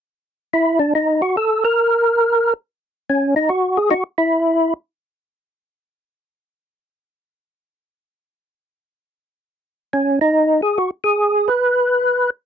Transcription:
0, 0, Header, 1, 2, 480
1, 0, Start_track
1, 0, Key_signature, -6, "minor"
1, 0, Tempo, 500000
1, 11959, End_track
2, 0, Start_track
2, 0, Title_t, "Tonewheel organ"
2, 0, Program_c, 0, 16
2, 514, Note_on_c, 0, 64, 86
2, 759, Note_off_c, 0, 64, 0
2, 763, Note_on_c, 0, 62, 86
2, 898, Note_off_c, 0, 62, 0
2, 913, Note_on_c, 0, 63, 78
2, 1164, Note_off_c, 0, 63, 0
2, 1171, Note_on_c, 0, 66, 100
2, 1308, Note_off_c, 0, 66, 0
2, 1317, Note_on_c, 0, 69, 77
2, 1572, Note_off_c, 0, 69, 0
2, 1580, Note_on_c, 0, 70, 94
2, 2435, Note_off_c, 0, 70, 0
2, 2972, Note_on_c, 0, 61, 76
2, 3213, Note_off_c, 0, 61, 0
2, 3226, Note_on_c, 0, 63, 83
2, 3353, Note_on_c, 0, 66, 90
2, 3359, Note_off_c, 0, 63, 0
2, 3622, Note_on_c, 0, 68, 96
2, 3636, Note_off_c, 0, 66, 0
2, 3740, Note_off_c, 0, 68, 0
2, 3749, Note_on_c, 0, 66, 88
2, 3752, Note_on_c, 0, 63, 78
2, 3784, Note_off_c, 0, 63, 0
2, 3876, Note_off_c, 0, 66, 0
2, 4013, Note_on_c, 0, 64, 83
2, 4548, Note_off_c, 0, 64, 0
2, 9536, Note_on_c, 0, 61, 67
2, 9785, Note_off_c, 0, 61, 0
2, 9804, Note_on_c, 0, 63, 95
2, 10186, Note_off_c, 0, 63, 0
2, 10199, Note_on_c, 0, 68, 82
2, 10348, Note_on_c, 0, 66, 89
2, 10356, Note_off_c, 0, 68, 0
2, 10470, Note_off_c, 0, 66, 0
2, 10597, Note_on_c, 0, 68, 96
2, 11020, Note_on_c, 0, 71, 86
2, 11035, Note_off_c, 0, 68, 0
2, 11811, Note_off_c, 0, 71, 0
2, 11959, End_track
0, 0, End_of_file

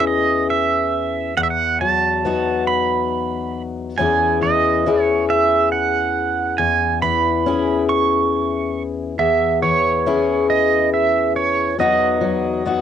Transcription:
0, 0, Header, 1, 3, 480
1, 0, Start_track
1, 0, Key_signature, 4, "major"
1, 0, Tempo, 867052
1, 763, Time_signature, 6, 3, 24, 8
1, 7093, End_track
2, 0, Start_track
2, 0, Title_t, "Pedal steel guitar"
2, 0, Program_c, 0, 26
2, 38, Note_on_c, 0, 75, 70
2, 275, Note_off_c, 0, 75, 0
2, 277, Note_on_c, 0, 76, 64
2, 759, Note_off_c, 0, 76, 0
2, 762, Note_on_c, 0, 78, 68
2, 792, Note_off_c, 0, 78, 0
2, 794, Note_on_c, 0, 76, 68
2, 831, Note_off_c, 0, 76, 0
2, 833, Note_on_c, 0, 78, 75
2, 988, Note_off_c, 0, 78, 0
2, 1002, Note_on_c, 0, 81, 80
2, 1461, Note_off_c, 0, 81, 0
2, 1480, Note_on_c, 0, 83, 70
2, 2000, Note_off_c, 0, 83, 0
2, 2201, Note_on_c, 0, 80, 73
2, 2450, Note_off_c, 0, 80, 0
2, 2451, Note_on_c, 0, 75, 76
2, 2777, Note_off_c, 0, 75, 0
2, 2777, Note_on_c, 0, 73, 76
2, 2905, Note_off_c, 0, 73, 0
2, 2934, Note_on_c, 0, 76, 78
2, 3164, Note_off_c, 0, 76, 0
2, 3166, Note_on_c, 0, 78, 68
2, 3643, Note_on_c, 0, 80, 86
2, 3660, Note_off_c, 0, 78, 0
2, 3867, Note_off_c, 0, 80, 0
2, 3887, Note_on_c, 0, 83, 96
2, 4343, Note_off_c, 0, 83, 0
2, 4369, Note_on_c, 0, 85, 87
2, 4884, Note_off_c, 0, 85, 0
2, 5089, Note_on_c, 0, 76, 76
2, 5326, Note_off_c, 0, 76, 0
2, 5328, Note_on_c, 0, 73, 86
2, 5809, Note_off_c, 0, 73, 0
2, 5811, Note_on_c, 0, 75, 76
2, 6030, Note_off_c, 0, 75, 0
2, 6054, Note_on_c, 0, 76, 62
2, 6271, Note_off_c, 0, 76, 0
2, 6289, Note_on_c, 0, 73, 67
2, 6530, Note_off_c, 0, 73, 0
2, 6532, Note_on_c, 0, 75, 68
2, 7093, Note_off_c, 0, 75, 0
2, 7093, End_track
3, 0, Start_track
3, 0, Title_t, "Steel-string acoustic guitar"
3, 0, Program_c, 1, 25
3, 0, Note_on_c, 1, 40, 60
3, 0, Note_on_c, 1, 52, 54
3, 0, Note_on_c, 1, 61, 46
3, 0, Note_on_c, 1, 64, 51
3, 0, Note_on_c, 1, 68, 47
3, 735, Note_off_c, 1, 61, 0
3, 736, Note_off_c, 1, 64, 0
3, 738, Note_off_c, 1, 68, 0
3, 753, Note_off_c, 1, 40, 0
3, 760, Note_off_c, 1, 52, 0
3, 760, Note_on_c, 1, 40, 57
3, 1002, Note_on_c, 1, 54, 54
3, 1246, Note_on_c, 1, 59, 44
3, 1249, Note_on_c, 1, 63, 45
3, 1254, Note_on_c, 1, 66, 53
3, 2175, Note_off_c, 1, 54, 0
3, 2178, Note_off_c, 1, 63, 0
3, 2198, Note_off_c, 1, 40, 0
3, 2204, Note_on_c, 1, 40, 59
3, 2208, Note_off_c, 1, 59, 0
3, 2208, Note_on_c, 1, 52, 51
3, 2210, Note_off_c, 1, 66, 0
3, 2210, Note_on_c, 1, 61, 46
3, 2215, Note_on_c, 1, 64, 46
3, 2219, Note_on_c, 1, 68, 54
3, 2442, Note_off_c, 1, 52, 0
3, 2445, Note_on_c, 1, 52, 52
3, 2689, Note_off_c, 1, 61, 0
3, 2691, Note_on_c, 1, 61, 44
3, 2693, Note_off_c, 1, 64, 0
3, 2695, Note_on_c, 1, 64, 48
3, 2697, Note_off_c, 1, 68, 0
3, 2699, Note_on_c, 1, 68, 50
3, 3647, Note_off_c, 1, 40, 0
3, 3649, Note_on_c, 1, 40, 61
3, 3886, Note_off_c, 1, 52, 0
3, 3889, Note_on_c, 1, 52, 57
3, 4129, Note_off_c, 1, 61, 0
3, 4132, Note_on_c, 1, 61, 52
3, 4134, Note_off_c, 1, 64, 0
3, 4136, Note_on_c, 1, 64, 46
3, 4139, Note_off_c, 1, 68, 0
3, 4141, Note_on_c, 1, 68, 54
3, 5058, Note_off_c, 1, 61, 0
3, 5060, Note_off_c, 1, 64, 0
3, 5063, Note_off_c, 1, 68, 0
3, 5080, Note_off_c, 1, 40, 0
3, 5086, Note_on_c, 1, 40, 59
3, 5321, Note_off_c, 1, 52, 0
3, 5327, Note_on_c, 1, 52, 54
3, 5570, Note_on_c, 1, 61, 47
3, 5574, Note_on_c, 1, 64, 53
3, 5578, Note_on_c, 1, 68, 55
3, 6496, Note_off_c, 1, 61, 0
3, 6498, Note_off_c, 1, 64, 0
3, 6500, Note_off_c, 1, 68, 0
3, 6518, Note_off_c, 1, 40, 0
3, 6523, Note_off_c, 1, 52, 0
3, 6525, Note_on_c, 1, 40, 59
3, 6528, Note_on_c, 1, 54, 48
3, 6531, Note_on_c, 1, 59, 54
3, 6534, Note_on_c, 1, 63, 56
3, 6538, Note_on_c, 1, 66, 61
3, 6752, Note_off_c, 1, 54, 0
3, 6759, Note_on_c, 1, 54, 62
3, 7000, Note_off_c, 1, 59, 0
3, 7003, Note_off_c, 1, 63, 0
3, 7006, Note_on_c, 1, 59, 46
3, 7009, Note_off_c, 1, 66, 0
3, 7010, Note_on_c, 1, 63, 49
3, 7015, Note_on_c, 1, 66, 59
3, 7093, Note_off_c, 1, 40, 0
3, 7093, Note_off_c, 1, 54, 0
3, 7093, Note_off_c, 1, 59, 0
3, 7093, Note_off_c, 1, 63, 0
3, 7093, Note_off_c, 1, 66, 0
3, 7093, End_track
0, 0, End_of_file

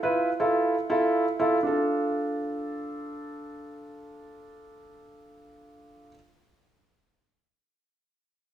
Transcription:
0, 0, Header, 1, 2, 480
1, 0, Start_track
1, 0, Key_signature, -1, "minor"
1, 0, Tempo, 500000
1, 1580, Time_signature, 4, 2, 24, 8
1, 8196, End_track
2, 0, Start_track
2, 0, Title_t, "Grand piano"
2, 0, Program_c, 0, 0
2, 27, Note_on_c, 0, 64, 81
2, 29, Note_on_c, 0, 65, 74
2, 32, Note_on_c, 0, 71, 92
2, 270, Note_off_c, 0, 64, 0
2, 271, Note_off_c, 0, 65, 0
2, 273, Note_off_c, 0, 71, 0
2, 382, Note_on_c, 0, 64, 80
2, 383, Note_on_c, 0, 65, 76
2, 387, Note_on_c, 0, 69, 89
2, 710, Note_off_c, 0, 64, 0
2, 711, Note_off_c, 0, 65, 0
2, 713, Note_off_c, 0, 69, 0
2, 860, Note_on_c, 0, 64, 84
2, 863, Note_on_c, 0, 65, 78
2, 865, Note_on_c, 0, 69, 95
2, 1189, Note_off_c, 0, 64, 0
2, 1191, Note_off_c, 0, 65, 0
2, 1192, Note_off_c, 0, 69, 0
2, 1339, Note_on_c, 0, 64, 84
2, 1340, Note_on_c, 0, 65, 75
2, 1343, Note_on_c, 0, 69, 91
2, 1506, Note_off_c, 0, 64, 0
2, 1507, Note_off_c, 0, 65, 0
2, 1509, Note_off_c, 0, 69, 0
2, 1563, Note_on_c, 0, 62, 74
2, 1582, Note_on_c, 0, 65, 66
2, 1601, Note_on_c, 0, 69, 83
2, 5844, Note_off_c, 0, 62, 0
2, 5863, Note_off_c, 0, 65, 0
2, 5882, Note_off_c, 0, 69, 0
2, 8196, End_track
0, 0, End_of_file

